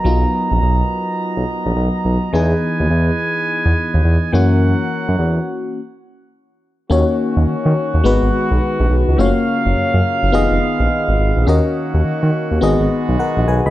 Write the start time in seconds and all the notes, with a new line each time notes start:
Already playing: F#3 B3 D#5 A#5
0.04 B1 F#3 B3 D#4 F4
0.51 A#1
0.62 B1
1.37 B1
1.66 A#1
1.76 B1
2.05 B1
2.33 E2 E3 B3 D#4 G#4 B4 G#5
2.80 D#2
2.90 E2
3.66 E2
3.94 D#2
4.05 E2
4.33 F#2 E3 A#3 C#4 F#4 A#4 C#5 F#5
5.08 F#2
5.19 E2
6.90 D#2 D#3 A#3 C#4 D#4 F#4 C#5
7.37 D#2
7.47 D#3
7.66 D#3
7.94 D#2
8.04 G#1 G#3 B3 D#4 F#4 B4
8.23 G#1
8.51 B1
8.80 A#1
8.90 B1
9.08 C#2
9.18 F#1 C#3 F#3 A3 A#3 C#4 F4 F#4 C#5 F5
9.25 A#3
9.66 F#1
9.76 F#2
9.94 F#2
10.23 F#1
10.32 F1 D#3 G#3 B3 D#4 F4 G#4 D#5
10.51 F1
10.80 A#1
11.08 G#1
11.19 G#1
11.37 A#1
11.47 D#2 A#3 C#4 D#4 F#4 A#4 D#5
11.94 D#2
12.05 D#3
12.23 D#3
12.51 D#2
12.61 G#1 G#3 B3 D#4 F#4 G#4 D#5
12.80 G#1
13.09 B1
13.19 A#4 F#5
13.37 A#1
13.48 B1 B4 G#5
13.66 C#2 D#5 B5